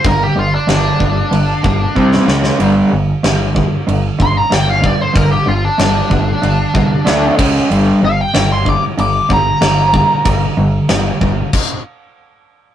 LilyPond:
<<
  \new Staff \with { instrumentName = "Lead electric guitar" } { \time 4/4 \key g \phrygian \tempo 4 = 94 bes'16 g'16 f'16 d'16 d'2~ d'8 r8 | r2 r8 c'''16 bes''16 g''16 f''16 d''16 c''16 | bes'16 g'16 f'16 d'16 d'2~ d'8 r8 | r8 f''16 g''8 c'''16 d'''16 r16 d'''8 bes''4.~ |
bes''4. r2 r8 | }
  \new Staff \with { instrumentName = "Overdriven electric guitar" } { \clef bass \time 4/4 \key g \phrygian <g, d>8 <g, d>8 <g, d>8 <g, d>8 <g, d>8 <g, d>8 <c g c'>8 <cis gis cis'>8 | <g, d g>8 <g, d>8 <g, d>8 <g, d>8 <g, d>8 <g, d>8 <g, d>8 <g, d>8 | <g, d>8 <g, d>8 <g, d>8 <g, d>8 <g, d>8 <g, d>8 <d a d'>8 <cis gis cis'>8 | <g, d g>8 <g, d>8 <g, d>8 <g, d>8 <g, d>8 <g, d>8 <g, d>8 <g, d>8 |
<g, d>8 <g, d>8 <g, d>8 <g, d>8 r2 | }
  \new Staff \with { instrumentName = "Overdriven electric guitar" } { \clef bass \time 4/4 \key g \phrygian <g, d>8 <g, d>8 <g, d>8 <g, d>8 <g, d>8 <g, d>8 <c g c'>8 <cis gis cis'>8 | <g, d g>8 <g, d>8 <g, d>8 <g, d>8 <g, d>8 <g, d>8 <g, d>8 <g, d>8 | <g, d>8 <g, d>8 <g, d>8 <g, d>8 <g, d>8 <g, d>8 <d a d'>8 <cis gis cis'>8 | <g, d g>8 <g, d>8 <g, d>8 <g, d>8 <g, d>8 <g, d>8 <g, d>8 <g, d>8 |
<g, d>8 <g, d>8 <g, d>8 <g, d>8 r2 | }
  \new Staff \with { instrumentName = "Fingered electric bass" } { \clef bass \time 4/4 \key g \phrygian g,,8 g,,8 g,,8 g,,8 g,,8 g,,8 c,8 cis,8 | g,,8 g,,8 g,,4 g,,8 g,,8 g,,4 | g,,8 g,,8 g,,8 g,,8 g,,8 c,8 d,8 cis,8 | g,,8 g,,8 g,,4 g,,8 g,,8 g,,4 |
g,,8 g,,8 g,,8 g,,8 r2 | }
  \new DrumStaff \with { instrumentName = "Drums" } \drummode { \time 4/4 <cymc bd>4 <cymc sn>8 bd8 cymc8 bd8 bd16 sn16 sn16 sn16 | cymc4 <cymc sn>8 bd8 cymc8 bd8 <cymc sn>8 bd8 | <cymc bd>4 <cymc sn>8 bd8 cymc8 bd8 <cymc sn>8 <cymc bd>8 | cymc4 <cymc sn>8 bd8 cymc8 bd8 <cymc sn>8 bd8 |
<cymc bd>4 <cymc sn>8 bd8 <cymc bd>4 r4 | }
>>